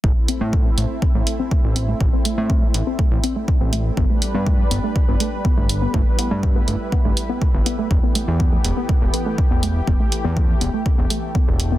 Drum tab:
HH |-x-x-x-x|-x-x-x-x|-x-x-x-x|-x-x-x-x|
BD |o-o-o-o-|o-o-o-o-|o-o-o-o-|o-o-o-o-|

HH |-x-x-x-x|-x-x-x-x|
BD |o-o-o-o-|o-o-o-o-|